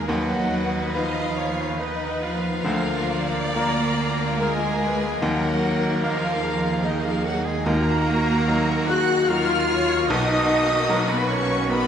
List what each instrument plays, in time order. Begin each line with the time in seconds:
Already playing: double bass section D#2, trombone section D#3, grand piano F#4 A#4
0.06 grand piano D#2 D#3, cello section F#3, french horn section F#3, violin section B3 D#4 F#5, trombone section D#4, oboe F#4, trumpet section B4, viola section B4, flute section F#5
0.93 french horn section F3, cello section F3, grand piano D#4 B4, oboe F4, viola section D#5, flute section F5, violin section F5
1.36 viola section C#5
1.78 french horn section D#3, cello section D#3, violin section B3 D#4 D#5, oboe D#4, grand piano D#4 B4, viola section B4, flute section D#5
2.22 cello section F3, french horn section F3, oboe F4, flute section F5, violin section F5
2.64 double bass section D2, grand piano D2 D3, trombone section F3 A#3, violin section A#3 F4, viola section A#4, trumpet section A#4
3.09 viola section D5
3.53 violin section A#3 F4 A#5, cello section A#3, french horn section A#3, grand piano A#3 F4 A#4, oboe A#4, flute section A#5
4.38 cello section G#3, french horn section G#3, grand piano A#3 F4 A#4, oboe G#4, viola section A#4, flute section G#5, violin section G#5
4.80 viola section B4
5.20 double bass section D#2, grand piano D#2 D#3, trombone section D#3, cello section F#3, french horn section F#3, violin section A#3 D#4 F#5, oboe F#4, viola section A#4, flute section F#5
6.03 cello section F3, french horn section F3, grand piano A#3 D#4 A#4, oboe F4, viola section A#4, violin section F5, flute section F5
6.44 viola section G#4
6.83 cello section D#3, french horn section D#3, violin section A#3 D#4 D#5, grand piano A#3 D#4 A#4, oboe D#4, flute section D#5
7.05 french horn section F3, cello section F3, oboe F4, flute section F5, violin section F5
7.25 french horn section F#3, cello section F#3, oboe F#4, flute section F#5, violin section F#5
7.45 french horn section G#3, cello section G#3, oboe G#4, flute section G#5, violin section G#5
7.65 grand piano D#2 D#3, violin section A#3 F#4 A#5, cello section A#3, french horn section A#3, trombone section A#3, viola section F#4, trumpet section F#4, oboe A#4, flute section A#5
8.48 grand piano F#3 D#4 A#4, viola section A#4
8.88 cello section F#4, french horn section F#4, viola section G#4, oboe F#5, flute section F#6, violin section F#6
9.29 grand piano F#3 D#4 A#4, cello section F4, french horn section F4, viola section A#4, oboe F5, flute section F6, violin section F6
9.69 viola section C#5
10.09 double bass section B1, grand piano B1 B2, trombone section D#3, violin section A#3 F#4 D#6, cello section D#4, french horn section D#4, viola section D#5, oboe D#5, flute section D#6
10.89 grand piano F#3 D#4 A#4, viola section B4
11.09 cello section B3, french horn section B3, oboe B4, flute section B5, violin section B5
11.29 cello section C#4, french horn section C#4, oboe C#5, violin section C#6, flute section C#6
11.70 grand piano F#3 D#4 A#4, violin section A#3 F#4 B5, cello section B3, french horn section B3, oboe B4, viola section D#5, flute section B5